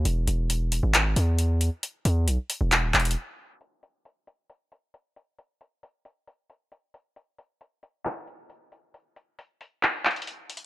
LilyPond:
<<
  \new Staff \with { instrumentName = "808-style bass" } { \clef bass \time 4/4 \key e \lydian \tempo 4 = 135 e,,8 e,,4~ e,,16 gis,,8. e,4~ e,16 r16 | r8 e,8 b,,16 r8 e,,8 dis,,16 e,,8 r4 | r1 | r1 |
r1 | r1 | }
  \new DrumStaff \with { instrumentName = "Drums" } \drummode { \time 4/4 hh8 hh8 hh8 hh8 <hc hh>8 hh8 hh8 hh8 | hh8 hh8 hh8 hh8 <hc hh>8 <hc hh>32 hh32 hh32 hh32 r4 | hh8 hh8 hh8 hh8 hh8 hh8 hh8 hh8 | hh8 hh8 hh8 hh8 hh8 hh8 hh8 hh8 |
hh8 hh8 hh8 hh8 <hc hh>8 hh8 hh8 hh8 | hh8 hh8 hh8 hh8 <hc hh>8 <hc hh>32 hh32 hh32 hh32 \tuplet 3/2 { hh16 r16 r16 hh16 hh16 r16 } | }
>>